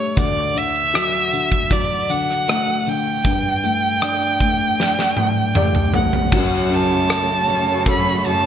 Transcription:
Already playing: G2 A3 D4 G4 C#5
0.17 D2 D5, kick, closed hi-hat
0.54 D3 E5, closed hi-hat
0.94 F#3, cross-stick, closed hi-hat
1.33 D3, closed hi-hat
1.52 kick
1.71 F#3 D5, kick, closed hi-hat
2.09 D3 F#5, closed hi-hat
2.29 cross-stick, closed hi-hat
2.48 A3, cross-stick, closed hi-hat
2.86 D3 G5, closed hi-hat
3.25 G2, kick, closed hi-hat
3.64 A3, closed hi-hat
4.02 D4, cross-stick, closed hi-hat
4.40 A3, kick, closed hi-hat
4.80 D4, snare
4.99 snare
5.17 A3, high tom
5.55 G4 D5, mid tom
5.75 mid tom
5.94 A3 F#5, floor tom
6.13 floor tom
6.32 F#2 C#3 F#3 A3 F#4 C#5, kick, crash
6.70 C#4 A5, closed hi-hat
7.09 A4, cross-stick, closed hi-hat
7.48 F#2 C#5, closed hi-hat
7.86 A4 B5, kick, closed hi-hat
8.25 F#2 A5, closed hi-hat

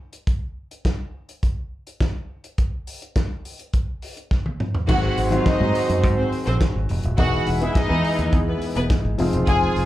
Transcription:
0.13 closed hi-hat
0.27 kick, closed hi-hat
0.71 closed hi-hat
0.85 kick, snare, closed hi-hat
1.29 closed hi-hat
1.43 kick, closed hi-hat
1.87 closed hi-hat
2.00 kick, snare, closed hi-hat
2.44 closed hi-hat
2.58 kick, closed hi-hat
2.87 open hi-hat
3.02 closed hi-hat
3.16 kick, snare, closed hi-hat
3.45 open hi-hat
3.59 closed hi-hat
3.73 kick, closed hi-hat
4.02 open hi-hat
4.17 closed hi-hat
4.31 kick, snare
4.46 high tom
4.60 mid tom
4.75 floor tom
4.88 G#1 D#3 F#3 G#3 C4 F#4 C5 F#5, kick, crash
5.17 G#1, open hi-hat
5.30 D#3 F#3 G#3 C4 F4 F#4 F5, closed hi-hat
5.46 D#4 D#5, muted fingered electric bass stroke, kick, snare, closed hi-hat
5.59 G#2 D#3 F#3 G#3 C4 F#4
5.75 open hi-hat
5.89 F#2, closed hi-hat
6.04 G#2, kick, closed hi-hat
6.17 C4 C5
6.32 open hi-hat
6.46 A#1 C4 C5, closed hi-hat
6.61 kick, snare, closed hi-hat
6.76 G#1
6.89 F1, open hi-hat
7.03 D#1, closed hi-hat
7.17 E1 E3 G#3 B3 D#4 E4 F#4 G#4 B4 F#5, kick, closed hi-hat
7.46 E1, open hi-hat
7.61 E3 G#3 B3 D#4 E4 G#4 E5, closed hi-hat
7.75 D#4 D#5, kick, snare, closed hi-hat
7.89 E2 E3 G#3 B3 D#4 G#4
8.04 open hi-hat
8.18 D#2, closed hi-hat
8.32 E2, kick, closed hi-hat
8.47 B3 B4
8.61 open hi-hat
8.75 E1 B3 B4, closed hi-hat
8.90 kick, snare, closed hi-hat
9.05 G#1
9.18 F1 F3 G#3 C4 D#4 F4 G#4 C5, open hi-hat
9.33 E1, closed hi-hat
9.47 F1 G#4 G#5, kick, closed hi-hat
9.76 F1, open hi-hat

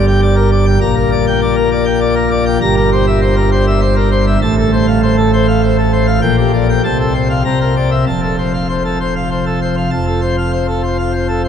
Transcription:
Already playing: G1 G2
0.07 G5
0.22 D5
0.36 A#4
0.52 D5
0.66 G5
0.81 A#1 A#2 A#5
0.96 A#4
1.11 D5
1.27 G5
1.42 D5
1.56 A#4
1.71 D5
1.85 G5
2.01 D5
2.16 A#4
2.31 D5
2.46 G5
2.61 G1 G2 A#5
2.77 A#4
2.92 C5
3.07 E5
3.22 C5
3.36 A#4
3.52 C5
3.67 E5
3.81 C5
3.96 A#4
4.12 C5
4.27 E5
4.42 A1 A2 A5
4.58 A4
4.73 C5
4.87 F5
5.03 C5
5.17 A4
5.33 C5
5.48 F5
5.63 C5
5.78 A4
5.93 C5
6.07 F5
6.22 A#1 A#2 G5
6.38 G4
6.53 D5
6.69 G5
6.84 C2 C3 A5
7.00 A4
7.14 C5
7.30 F5
7.44 C2 C3 A#5
7.61 A#4
7.76 D5
7.91 E5
8.06 F1 F2 A5
8.22 A4
8.38 C5
8.54 F5
8.69 C5
8.85 A4
9.00 C5
9.16 F5
9.31 C5
9.46 A4
9.62 C5
9.77 F5
9.91 F1 F2 A5
10.06 A4
10.22 C5
10.38 F5
10.52 C5
10.68 A4
10.83 C5
10.98 F5
11.13 C5
11.28 A4
11.44 C5

